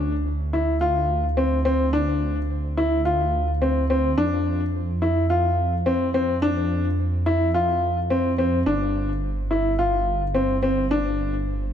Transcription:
Already playing: detuned saw bass D2, upright piano D4
0.53 upright piano E4
0.81 upright piano F4
1.37 upright piano C4
1.65 upright piano C4
1.93 upright piano D4
2.77 upright piano E4
3.05 upright piano F4
3.62 upright piano C4
3.90 upright piano C4
4.18 detuned saw bass F2, upright piano D4
5.02 upright piano E4
5.30 upright piano F4
5.86 upright piano C4
6.14 upright piano C4
6.42 upright piano D4
7.26 upright piano E4
7.54 upright piano F4
8.10 upright piano C4
8.38 upright piano C4
8.66 detuned saw bass G1, upright piano D4
9.51 upright piano E4
9.79 upright piano F4
10.35 upright piano C4
10.63 upright piano C4
10.91 upright piano D4

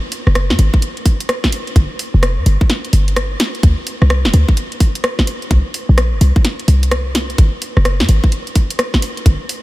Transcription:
0.12 open hi-hat
0.27 808-style bass F#1, cross-stick
0.35 cross-stick, closed hi-hat
0.50 808-style bass G#2, snare
0.59 808-style bass G#1, open hi-hat
0.74 kick
0.82 closed hi-hat
0.97 closed hi-hat
1.06 kick, open hi-hat
1.20 closed hi-hat
1.29 cross-stick, closed hi-hat
1.44 kick, snare
1.52 open hi-hat
1.67 closed hi-hat
1.76 808-style bass G1, kick, closed hi-hat
1.99 open hi-hat
2.14 808-style bass F1
2.23 cross-stick, closed hi-hat
2.38 808-style bass G2
2.46 808-style bass G1, open hi-hat
2.61 kick
2.70 snare, closed hi-hat
2.85 closed hi-hat
2.93 808-style bass G1, open hi-hat
3.08 closed hi-hat
3.16 cross-stick, closed hi-hat
3.40 snare, open hi-hat
3.55 closed hi-hat
3.63 808-style bass D2, kick, closed hi-hat
3.87 open hi-hat
4.02 808-style bass C2, cross-stick
4.10 cross-stick, closed hi-hat
4.25 808-style bass D1, snare
4.34 808-style bass D2, open hi-hat
4.48 kick
4.57 closed hi-hat
4.72 closed hi-hat
4.80 kick, open hi-hat
4.95 closed hi-hat
5.04 cross-stick, closed hi-hat
5.19 kick, snare
5.27 open hi-hat
5.42 closed hi-hat
5.51 808-style bass C2, kick, closed hi-hat
5.74 open hi-hat
5.89 808-style bass A#1
5.98 cross-stick, closed hi-hat
6.13 808-style bass G1
6.21 808-style bass C2, open hi-hat
6.36 kick
6.45 snare, closed hi-hat
6.60 closed hi-hat
6.68 808-style bass C2, open hi-hat
6.83 closed hi-hat
6.91 cross-stick, closed hi-hat
7.15 snare, open hi-hat
7.30 closed hi-hat
7.38 808-style bass G#1, kick, closed hi-hat
7.62 open hi-hat
7.77 808-style bass F#1, cross-stick
7.85 cross-stick, closed hi-hat
8.00 808-style bass G#2, snare
8.09 808-style bass G#1, open hi-hat
8.24 kick
8.32 closed hi-hat
8.47 closed hi-hat
8.55 kick, open hi-hat
8.70 closed hi-hat
8.79 cross-stick, closed hi-hat
8.94 kick, snare
9.02 open hi-hat
9.17 closed hi-hat
9.26 808-style bass G1, kick, closed hi-hat
9.49 open hi-hat

